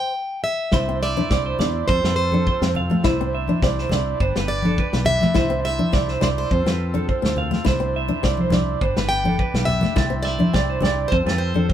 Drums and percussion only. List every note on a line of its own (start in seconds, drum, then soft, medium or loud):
0.72 kick loud
0.72 snare medium
1.02 snare soft
1.17 high conga medium
1.31 kick loud
1.31 snare medium
1.59 snare medium
1.59 low conga medium
1.89 kick loud
2.04 snare medium
2.32 high conga medium
2.47 kick medium
2.62 snare medium
2.75 low conga medium
2.90 high conga medium
3.04 kick medium
3.04 snare medium
3.48 high conga medium
3.62 kick loud
3.62 snare medium
3.78 snare soft
3.89 snare medium
3.89 low conga medium
4.20 kick loud
4.36 snare medium
4.62 high conga medium
4.78 kick medium
4.93 snare medium
5.05 low conga medium
5.21 snare soft
5.21 high conga medium
5.35 kick loud
5.35 snare medium
5.64 snare soft
5.79 high conga medium
5.93 kick loud
5.93 snare medium
6.08 snare soft
6.21 snare medium
6.21 low conga medium
6.51 kick loud
6.67 snare medium
6.95 high conga medium
7.09 kick medium
7.25 snare medium
7.36 low conga medium
7.51 snare soft
7.51 high conga medium
7.66 kick medium
7.66 snare medium
8.08 high conga medium
8.24 kick medium
8.24 snare medium
8.37 high conga medium
8.50 snare medium
8.50 high conga medium
8.50 low conga medium
8.81 kick loud
8.97 snare medium
9.24 high conga medium
9.39 kick medium
9.55 snare medium
9.67 low conga medium
9.81 snare soft
9.81 high conga medium
9.96 kick loud
9.96 snare medium
9.96 low agogo medium
10.26 snare soft
10.39 high conga medium
10.53 kick loud
10.53 snare medium
10.53 low agogo medium
10.81 snare medium
10.81 low conga medium
10.81 low agogo medium
11.12 kick loud
11.26 snare medium
11.26 low agogo medium
11.54 high conga medium
11.70 kick medium